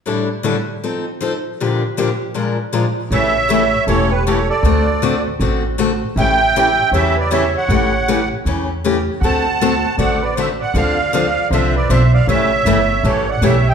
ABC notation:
X:1
M:4/4
L:1/16
Q:"Swing" 1/4=157
K:Amix
V:1 name="Accordion"
z16 | z16 | e8 c2 B2 c2 d2- | d6 z8 z2 |
g8 e2 d2 e2 f2- | f6 z8 z2 | a8 f2 d2 e2 f2 | =f8 e2 d2 e2 f2 |
e8 c2 f2 e2 g2 |]
V:2 name="Soprano saxophone"
z16 | z16 | c8 A2 G2 A2 A2- | A6 z8 z2 |
e8 c2 B2 c2 c2- | c6 z8 z2 | f8 d2 B2 =c2 d2 | d8 =c2 B2 c2 d2 |
c8 A2 d2 c2 e2 |]
V:3 name="Steel-string acoustic guitar"
[A,,D,G,DEA]2 z2 [A,,D,G,DEA] z3 [=F,=C_EA]2 z2 [F,CEA] z3 | [_B,,D,=F,_B,DG]2 z2 [B,,D,F,B,DG] z3 [B,,F,_A,D=F_B]2 z2 [B,,F,A,DFB] z3 | [C,E,A,CG]2 z2 [C,E,A,CG] z3 [C,E,A,CG]2 z2 [C,E,A,CG] z3 | [D,A,=CFA]2 z2 [D,A,CFA] z3 [D,A,CFA]2 z2 [D,A,CFA] z3 |
[C,E,A,CG]2 z2 [C,E,A,CG] z3 [C,E,A,CG]2 z2 [C,E,A,CG] z3 | [C,E,A,CG]2 z2 [C,E,A,CG] z3 [C,E,A,CG]2 z2 [C,E,A,CG] z3 | [D,A,=CFA]2 z2 [D,A,CFA] z3 [D,A,CFA]2 z2 [D,A,CFA] z3 | [D,=F,=CDA]2 z2 [D,F,CDA] z3 [D,F,CDA]2 z2 [D,F,CDA] z3 |
[C,E,A,CG]2 z2 [C,E,A,CG] z3 [C,E,A,CG]2 z2 [C,E,A,CG] z3 |]
V:4 name="Upright bass" clef=bass
z16 | z16 | A,,,8 E,,,8 | D,,8 A,,,8 |
A,,,8 E,,8 | A,,,8 E,,8 | D,,8 A,,,8 | D,,8 =C,,4 B,,,4 |
A,,,4 G,,,4 A,,,4 B,,,4 |]